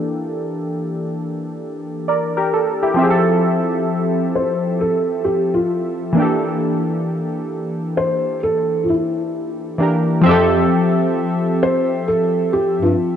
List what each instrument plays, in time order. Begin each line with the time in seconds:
Already playing: synth keys E3 A#3 D4 G4 A4
2.08 synth keys A#4 D5
2.37 synth keys G4 A#4
2.53 synth keys A4
2.83 synth keys E4 G4
2.94 synth keys F3 C4
2.98 synth keys G4 E5
3.03 synth keys G#4
3.10 synth keys A4
4.35 felt piano C5
4.81 felt piano A4
5.24 felt piano G4
5.54 felt piano F4
6.13 synth keys E3 A#3
6.17 synth keys D4 G4
6.22 synth keys A4
7.97 felt piano C5
8.43 felt piano A4
8.84 felt piano F4
8.90 felt piano E4
9.78 synth keys E3 A#3 D4 G4
9.83 synth keys A#4
10.21 synth keys F3 C4
10.26 bass clarinet F2, synth keys G4 E5
10.31 synth keys A4
11.63 felt piano C5
12.08 felt piano A4
12.53 felt piano G4
12.82 bass clarinet G2, felt piano F4